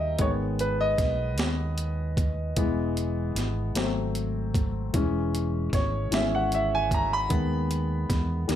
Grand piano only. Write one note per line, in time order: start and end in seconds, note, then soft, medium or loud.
0.00 0.16 D#3 medium
0.00 0.16 G3 soft
0.00 0.16 A#3 medium
0.00 0.21 D#5 medium
0.00 0.21 E5 medium
0.00 0.21 G5 medium
0.00 0.22 A#5 medium
0.18 1.33 D#3 soft
0.18 1.34 G#3 soft
0.18 1.34 B3 medium
0.18 0.30 C#5 medium
0.60 0.78 B4 medium
0.81 2.73 D#5 medium
2.57 3.71 E3 medium
2.57 3.72 G#3 soft
2.57 3.72 B3 medium
3.76 4.90 F#3 medium
3.76 4.90 A3 soft
3.76 4.90 C4 medium
4.93 6.10 E3 medium
4.93 6.11 G#3 soft
4.93 6.11 C#4 medium
5.74 6.14 C#5 medium
6.11 6.47 E3 soft
6.11 6.48 G#3 soft
6.11 6.48 C#4 medium
6.11 6.34 E5 medium
6.35 6.54 F#5 medium
6.55 6.74 E5 medium
6.75 6.92 G#5 loud
6.94 7.11 A#5 loud
7.13 8.27 B5 loud
7.29 7.83 D#3 medium
7.29 7.83 G#3 soft
7.29 7.83 B3 medium
8.48 8.55 D#3 medium
8.48 8.55 G3 medium
8.48 8.55 A#3 medium